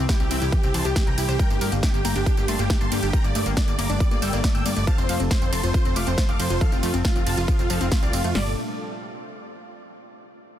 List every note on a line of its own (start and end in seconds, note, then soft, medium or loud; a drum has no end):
0.00 1.35 C3 medium
0.00 1.36 E3 medium
0.00 4.83 G3 medium
0.00 1.36 E4 medium
0.00 4.83 G4 medium
0.09 0.13 E4 medium
0.09 0.19 G4 medium
0.09 kick loud
0.09 snare loud
0.09 closed hi-hat soft
0.09 tambourine soft
0.20 0.29 C2 medium
0.20 0.23 C4 medium
0.20 0.29 G4 medium
0.20 0.30 G4 medium
0.20 closed hi-hat soft
0.20 tambourine soft
0.31 0.40 C2 loud
0.31 0.37 C4 medium
0.31 0.40 E5 medium
0.31 0.40 G5 medium
0.31 0.40 G5 loud
0.31 open hi-hat loud
0.31 ride medium
0.31 tambourine medium
0.42 0.51 C2 medium
0.42 0.51 E4 medium
0.42 0.51 G4 medium
0.42 closed hi-hat soft
0.42 tambourine soft
0.52 0.59 E3 medium
0.52 0.62 G4 medium
0.52 kick loud
0.52 closed hi-hat medium
0.52 tambourine soft
0.63 0.72 C2 medium
0.63 0.72 C4 medium
0.63 0.73 G4 medium
0.63 closed hi-hat soft
0.63 tambourine soft
0.74 0.83 C2 loud
0.74 0.80 E3 medium
0.74 0.84 C5 medium
0.74 0.84 A5 loud
0.74 open hi-hat loud
0.74 ride medium
0.74 tambourine medium
0.85 0.94 C2 medium
0.85 0.94 G4 medium
0.85 0.95 G4 medium
0.85 closed hi-hat medium
0.85 tambourine soft
0.96 1.02 E3 medium
0.96 1.06 G4 medium
0.96 kick loud
0.96 snare loud
0.96 closed hi-hat soft
0.96 tambourine soft
1.07 1.16 C2 medium
1.07 1.13 E3 medium
1.07 1.17 G5 medium
1.07 1.17 A#5 medium
1.07 1.17 A#5 loud
1.07 closed hi-hat soft
1.07 tambourine soft
1.18 1.27 C2 medium
1.18 1.24 E4 medium
1.18 1.27 G4 medium
1.18 open hi-hat loud
1.18 ride medium
1.18 tambourine medium
1.28 1.38 C2 medium
1.28 1.38 G4 medium
1.28 1.35 C5 loud
1.28 closed hi-hat soft
1.28 tambourine soft
1.39 4.84 D3 medium
1.39 1.45 G3 medium
1.39 8.31 A3 medium
1.39 4.84 A#3 medium
1.39 1.49 A#4 medium
1.39 1.49 G5 loud
1.39 kick loud
1.39 closed hi-hat soft
1.39 tambourine soft
1.50 1.59 G1 medium
1.50 1.59 A#3 medium
1.50 1.60 G4 medium
1.50 closed hi-hat soft
1.50 tambourine soft
1.61 1.70 G2 loud
1.61 1.71 G4 medium
1.61 1.67 A#4 loud
1.61 open hi-hat loud
1.61 ride medium
1.61 tambourine medium
1.72 1.81 G1 medium
1.72 1.78 A#3 medium
1.72 closed hi-hat soft
1.72 tambourine soft
1.83 1.86 D4 medium
1.83 1.93 G4 medium
1.83 kick loud
1.83 snare loud
1.83 closed hi-hat soft
1.83 tambourine soft
1.94 2.03 G1 medium
1.94 1.97 A#3 medium
1.94 2.04 G4 medium
1.94 closed hi-hat soft
1.94 tambourine soft
2.04 2.14 G1 loud
2.04 2.11 A#3 medium
2.04 2.14 G5 medium
2.04 2.14 A#5 medium
2.04 open hi-hat loud
2.04 ride medium
2.04 tambourine medium
2.15 2.25 G1 loud
2.15 2.24 D4 medium
2.15 2.25 G4 medium
2.15 closed hi-hat soft
2.15 tambourine soft
2.26 2.32 D4 medium
2.26 2.36 G4 medium
2.26 kick loud
2.26 closed hi-hat medium
2.26 tambourine soft
2.37 2.46 G1 medium
2.37 2.46 A#3 medium
2.37 2.47 G4 medium
2.37 closed hi-hat soft
2.37 tambourine soft
2.48 2.57 G1 loud
2.48 2.52 A3 medium
2.48 2.58 A5 medium
2.48 2.58 C6 loud
2.48 2.58 C6 medium
2.48 open hi-hat loud
2.48 ride medium
2.48 tambourine medium
2.59 2.68 G1 medium
2.59 2.65 A#3 medium
2.59 2.69 G4 medium
2.59 closed hi-hat medium
2.59 tambourine soft
2.70 2.73 D4 medium
2.70 2.80 G4 medium
2.70 kick loud
2.70 snare loud
2.70 closed hi-hat medium
2.70 tambourine soft
2.81 2.90 G1 medium
2.81 2.84 A#3 medium
2.81 2.90 A5 medium
2.81 2.90 C6 loud
2.81 2.91 C6 medium
2.81 closed hi-hat soft
2.81 tambourine soft
2.92 3.01 G2 loud
2.92 2.98 A#3 medium
2.92 3.01 G4 medium
2.92 open hi-hat loud
2.92 ride medium
2.92 tambourine medium
3.02 3.12 G1 medium
3.02 3.12 D4 medium
3.02 3.12 G4 medium
3.02 closed hi-hat medium
3.02 tambourine soft
3.13 3.19 G3 medium
3.13 3.23 G5 medium
3.13 3.23 A#5 loud
3.13 kick loud
3.13 closed hi-hat medium
3.13 tambourine soft
3.24 3.33 G1 medium
3.24 3.33 A#3 medium
3.24 3.34 D5 medium
3.24 closed hi-hat soft
3.24 tambourine soft
3.35 3.44 G2 loud
3.35 3.39 A3 medium
3.35 3.45 D5 medium
3.35 open hi-hat loud
3.35 ride medium
3.35 tambourine medium
3.46 3.55 G1 medium
3.46 3.52 A#3 loud
3.46 closed hi-hat medium
3.46 tambourine soft
3.57 3.61 D4 medium
3.57 3.66 D5 medium
3.57 3.67 D5 medium
3.57 kick loud
3.57 snare loud
3.57 closed hi-hat medium
3.57 tambourine soft
3.68 3.77 G1 medium
3.68 3.71 A#3 medium
3.68 3.77 D5 medium
3.68 closed hi-hat soft
3.68 tambourine soft
3.78 3.88 G1 loud
3.78 3.85 A#3 medium
3.78 3.88 A#5 medium
3.78 3.88 D6 medium
3.78 3.88 D6 loud
3.78 open hi-hat loud
3.78 ride medium
3.78 tambourine medium
3.89 3.99 G1 loud
3.89 3.99 D4 medium
3.89 3.99 D5 medium
3.89 closed hi-hat soft
3.89 tambourine soft
4.00 4.06 G3 medium
4.00 4.10 D5 medium
4.00 kick loud
4.00 closed hi-hat medium
4.00 tambourine soft
4.11 4.20 G1 medium
4.11 4.20 A#3 medium
4.11 4.21 D5 medium
4.11 closed hi-hat soft
4.11 tambourine soft
4.22 4.31 G1 loud
4.22 4.31 G3 loud
4.22 4.32 G5 medium
4.22 4.32 E6 loud
4.22 4.32 E6 medium
4.22 open hi-hat loud
4.22 ride medium
4.22 tambourine medium
4.33 4.42 G1 medium
4.33 4.39 A#3 loud
4.33 4.42 D5 medium
4.33 4.43 D5 medium
4.33 closed hi-hat medium
4.33 tambourine soft
4.44 4.53 A3 medium
4.44 4.53 D5 medium
4.44 kick loud
4.44 snare loud
4.44 closed hi-hat medium
4.44 tambourine soft
4.55 4.64 G1 medium
4.55 4.58 A#3 medium
4.55 4.64 G5 medium
4.55 4.64 E6 medium
4.55 closed hi-hat soft
4.55 tambourine soft
4.65 4.75 G2 loud
4.65 4.72 A#3 medium
4.65 4.75 D5 medium
4.65 open hi-hat loud
4.65 ride medium
4.65 tambourine medium
4.76 4.86 G1 medium
4.76 4.80 A3 medium
4.76 4.86 D5 medium
4.76 closed hi-hat medium
4.76 tambourine soft
4.87 8.32 C3 medium
4.87 4.93 F3 medium
4.87 8.32 F3 medium
4.87 8.32 F4 medium
4.87 8.32 A4 medium
4.87 4.97 F5 medium
4.87 4.97 A5 loud
4.87 kick loud
4.87 closed hi-hat medium
4.87 tambourine soft
4.98 5.07 F1 medium
4.98 5.07 C4 medium
4.98 5.08 C5 medium
4.98 closed hi-hat soft
4.98 tambourine soft
5.09 5.18 F2 loud
5.09 5.19 C5 medium
5.09 5.15 F5 loud
5.09 open hi-hat loud
5.09 ride medium
5.09 tambourine medium
5.20 5.29 F1 medium
5.20 5.26 C4 medium
5.20 closed hi-hat medium
5.20 tambourine soft
5.31 5.34 F4 medium
5.31 5.40 C5 medium
5.31 kick loud
5.31 snare loud
5.31 closed hi-hat medium
5.31 tambourine soft
5.41 5.51 F1 medium
5.41 5.45 C4 medium
5.41 5.51 C5 medium
5.41 closed hi-hat soft
5.41 tambourine soft
5.52 5.62 F1 loud
5.52 5.58 C4 medium
5.52 5.62 A5 medium
5.52 5.62 C6 loud
5.52 5.62 C6 medium
5.52 open hi-hat loud
5.52 ride medium
5.52 tambourine medium
5.63 5.73 F1 loud
5.63 5.72 F4 medium
5.63 5.73 C5 medium
5.63 closed hi-hat medium
5.63 tambourine soft
5.74 5.80 F4 medium
5.74 5.84 C5 medium
5.74 kick loud
5.74 closed hi-hat medium
5.74 tambourine soft
5.85 5.94 F1 medium
5.85 5.94 C4 medium
5.85 5.95 C5 medium
5.85 closed hi-hat soft
5.85 tambourine soft
5.96 6.05 F1 loud
5.96 6.00 A3 medium
5.96 6.06 F5 medium
5.96 6.06 D6 medium
5.96 6.06 D6 loud
5.96 open hi-hat loud
5.96 ride medium
5.96 tambourine medium
6.07 6.16 F1 medium
6.07 6.13 C4 medium
6.07 6.17 C5 medium
6.07 closed hi-hat medium
6.07 tambourine soft
6.18 6.21 F4 medium
6.18 6.27 C5 medium
6.18 kick loud
6.18 snare loud
6.18 closed hi-hat medium
6.18 tambourine soft
6.29 6.38 F1 medium
6.29 6.32 C4 medium
6.29 6.38 F5 medium
6.29 6.38 D6 loud
6.29 closed hi-hat soft
6.29 tambourine soft
6.39 6.49 F2 loud
6.39 6.45 C4 medium
6.39 6.49 C5 medium
6.39 open hi-hat loud
6.39 ride medium
6.39 tambourine medium
6.50 6.59 F1 medium
6.50 6.59 F4 medium
6.50 6.60 C5 medium
6.50 closed hi-hat medium
6.50 tambourine soft
6.61 6.67 F3 medium
6.61 6.71 A4 medium
6.61 6.71 F5 loud
6.61 kick loud
6.61 closed hi-hat medium
6.61 tambourine soft
6.72 6.81 F1 medium
6.72 6.81 C4 medium
6.72 6.82 F4 medium
6.72 closed hi-hat soft
6.72 tambourine soft
6.83 6.92 F2 loud
6.83 6.86 A3 medium
6.83 6.93 F4 medium
6.83 open hi-hat loud
6.83 ride medium
6.83 tambourine medium
6.94 7.03 F1 medium
6.94 7.00 C4 loud
6.94 closed hi-hat medium
6.94 tambourine soft
7.05 7.08 F4 medium
7.05 7.14 F4 medium
7.05 kick loud
7.05 snare loud
7.05 closed hi-hat medium
7.05 tambourine soft
7.15 7.25 F1 medium
7.15 7.19 C4 medium
7.15 7.25 F4 medium
7.15 closed hi-hat soft
7.15 tambourine soft
7.26 7.36 F1 loud
7.26 7.32 C4 medium
7.26 7.36 F5 medium
7.26 7.36 A5 loud
7.26 7.36 A5 medium
7.26 open hi-hat loud
7.26 ride medium
7.26 tambourine medium
7.37 7.46 F1 loud
7.37 7.46 F4 medium
7.37 7.47 F4 medium
7.37 closed hi-hat medium
7.37 tambourine soft
7.48 7.54 F3 medium
7.48 7.58 F4 medium
7.48 kick loud
7.48 closed hi-hat medium
7.48 tambourine soft
7.59 7.68 F1 medium
7.59 7.68 C4 medium
7.59 7.69 F4 medium
7.59 closed hi-hat soft
7.59 tambourine soft
7.70 7.79 F1 loud
7.70 7.79 F3 loud
7.70 7.80 A4 medium
7.70 7.80 F5 loud
7.70 open hi-hat loud
7.70 ride medium
7.70 tambourine medium
7.81 7.90 F1 medium
7.81 7.87 C4 loud
7.81 7.90 F4 medium
7.81 closed hi-hat medium
7.81 tambourine soft
7.92 8.01 A3 medium
7.92 8.01 F4 medium
7.92 kick loud
7.92 snare loud
7.92 open hi-hat medium
7.92 tambourine soft
8.02 8.12 C2 medium
8.02 8.06 C4 medium
8.02 8.12 F4 medium
8.02 8.12 D5 medium
8.02 closed hi-hat soft
8.02 tambourine soft
8.13 8.23 F1 loud
8.13 8.19 C4 medium
8.13 8.23 F4 medium
8.13 open hi-hat loud
8.13 ride medium
8.13 tambourine medium
8.24 8.33 F2 medium
8.24 8.28 A3 medium
8.24 8.34 F4 medium
8.24 closed hi-hat medium
8.24 tambourine soft
8.35 8.55 G1 loud
8.35 8.55 A#2 medium
8.35 8.55 G3 loud
8.35 8.55 G3 medium
8.35 8.55 A3 medium
8.35 8.55 D4 medium
8.35 8.55 A4 medium
8.35 8.51 D5 medium
8.35 snare loud
8.35 open hi-hat medium